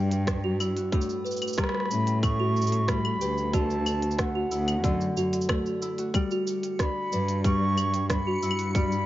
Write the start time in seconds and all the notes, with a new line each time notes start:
Already playing: G2 D3 G3 D4 G5
0.11 G5, open hi-hat, cabasa
0.27 D4, kick, cross-stick, open hi-hat, cabasa
0.44 F#4
0.60 E4, cabasa, claves
0.76 F#4, open hi-hat, cabasa
0.92 A2 C#5, kick, open hi-hat
1.01 cabasa
1.09 cabasa
1.24 B4, cabasa
1.31 cabasa
1.37 cabasa
1.42 open hi-hat, cabasa, claves
1.47 cabasa
1.53 cabasa
1.58 G3 G4 B5, kick, cross-stick, open hi-hat
1.64 cross-stick
1.69 cross-stick
1.75 cross-stick
1.80 cross-stick
1.85 cross-stick
1.90 A2 C#4, cabasa
2.06 G5, open hi-hat, cabasa
2.23 A2 C#6, kick, open hi-hat, cabasa, claves
2.40 F#4
2.56 cabasa
2.62 cabasa
2.67 cabasa
2.72 open hi-hat
2.88 G3 C#5 B5, kick, cross-stick, open hi-hat, cabasa
3.05 claves
3.21 D2 G4 B4, cabasa
3.38 cabasa
3.53 D3 F#4 A5, kick, open hi-hat, cabasa
3.70 cabasa
3.86 cabasa, claves
4.02 F#5, open hi-hat
4.11 cabasa
4.19 A3 F#5, kick, cross-stick, open hi-hat, cabasa
4.35 F#4
4.51 D2 E4, cabasa
4.68 open hi-hat, cabasa, claves
4.84 F#2 D3 D5, kick, open hi-hat, cabasa
5.01 cabasa
5.16 F#2 F#4, cabasa
5.33 open hi-hat, cabasa
5.41 cabasa
5.49 A3 C#5, kick, cross-stick, open hi-hat, claves
5.66 cabasa
5.82 E4, cabasa
5.98 F#4 F#5, open hi-hat, cabasa
6.14 G3 C#7, kick, open hi-hat, cabasa, claves
6.31 F#4, cabasa
6.47 cabasa
6.63 open hi-hat, cabasa
6.79 D4 D5 B5, kick, cross-stick, open hi-hat, cabasa
7.12 G2 D4 B4, cabasa
7.28 open hi-hat, cabasa
7.44 G3 G4 C#6, kick, open hi-hat, cabasa
7.78 cabasa, claves
7.94 G5, open hi-hat, cabasa
8.10 D4 B5, kick, cross-stick, open hi-hat, cabasa
8.27 F#4
8.42 G2 E4, cabasa
8.51 claves
8.59 F#4, open hi-hat, cabasa
8.75 G3 D5 B5, kick, open hi-hat, cabasa
8.92 cabasa